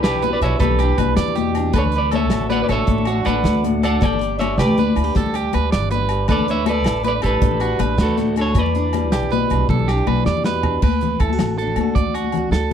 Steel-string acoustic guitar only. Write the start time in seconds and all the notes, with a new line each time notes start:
Already playing: E3 G3 D4
0.07 G4
0.25 B2
0.45 D4
0.63 E3
0.82 D4
1.00 G3
1.19 G4
1.37 B2
1.57 D4
1.76 D3
1.95 D4
2.13 A3
2.32 F#4
2.52 A2
2.71 D4
2.87 D3
3.08 D4
3.28 A3
3.46 F#4
3.64 A2
3.83 D4
4.01 G3
4.19 G4
4.39 D4
4.59 B4
4.78 D3
4.95 E4
5.04 G4
5.15 G3
5.36 G4
5.74 B4
5.94 D3
6.12 G4
6.29 D3
6.50 D4
6.67 A3
6.86 E4
7.03 A2
7.22 D4
7.42 D3
7.60 D4
7.80 A3
8.00 F#4
8.17 A2
8.37 D4
8.56 E3
8.75 D4
8.93 G3
9.13 G4
9.31 B2
9.52 D4
9.70 E3
9.91 D4
10.07 G3
10.26 G4
10.44 B2
10.65 D4
10.84 D3
11.21 E4
11.33 F#4
11.42 A3
11.62 D4
11.81 F#4
11.98 D3
12.37 F#4
12.55 A3